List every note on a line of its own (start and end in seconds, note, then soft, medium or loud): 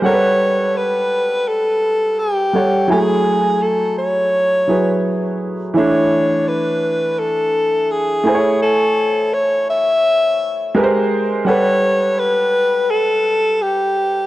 0.02 2.49 G3 medium
0.02 2.50 A4 medium
0.02 0.78 C#5 loud
0.02 2.49 F#5 medium
0.07 0.11 A#4 medium
0.13 2.54 B4 medium
0.77 1.50 B4 loud
1.48 2.21 A4 loud
2.19 2.90 G4 loud
2.53 2.89 G3 soft
2.53 2.90 A4 soft
2.53 2.90 C#5 medium
2.53 2.89 F#5 soft
2.88 4.63 F#3 medium
2.88 4.64 E4 medium
2.88 3.64 G#4 loud
2.88 4.65 G#5 medium
2.92 4.66 A3 medium
3.62 3.97 A4 loud
3.98 5.36 C#5 loud
4.67 5.75 F#3 medium
4.67 5.74 E4 soft
4.67 5.75 G#4 soft
4.67 5.76 B4 medium
5.74 8.20 E3 medium
5.74 8.22 A3 medium
5.74 8.21 E4 medium
5.74 6.50 C#5 loud
5.78 8.23 D4 medium
6.48 7.21 B4 loud
7.19 7.92 A4 loud
7.91 8.61 G#4 loud
8.24 10.70 A3 medium
8.24 10.71 E4 medium
8.24 10.72 G#5 medium
8.28 8.33 C5 medium
8.35 10.76 C#5 medium
8.62 9.35 A4 loud
9.34 9.69 C#5 loud
9.70 10.72 E5 loud
10.75 11.46 G#3 medium
10.75 11.47 G4 medium
10.75 11.47 A#4 medium
10.75 10.82 B4 medium
10.83 11.51 C5 medium
11.45 14.27 G3 medium
11.45 14.27 A4 medium
11.45 12.20 C#5 loud
11.45 14.27 F#5 medium
11.49 14.27 B4 medium
12.19 12.92 B4 loud
12.91 13.64 A4 loud
13.62 14.27 G4 loud